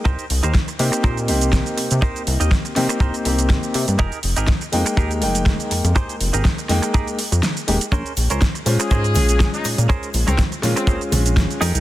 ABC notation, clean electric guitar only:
X:1
M:4/4
L:1/16
Q:"Swing 16ths" 1/4=122
K:Bbdor
V:1 name="Clean electric guitar"
[EGBc]2 z [EGBc] z4 [EGBc] z6 z | [EGBc]2 z [EGBe] z4 [EGBc] z6 z | [EGAB]2 z [EGAB] z4 [EGAB] z6 z | [EGAc]2 z [EGAB] z4 [EGAB] z6 z |
[DABc]2 z [DABc] z4 [DABc] z6 z | [DABc]2 z [DABd] z4 [DABc] z4 z [EGAB]2 |]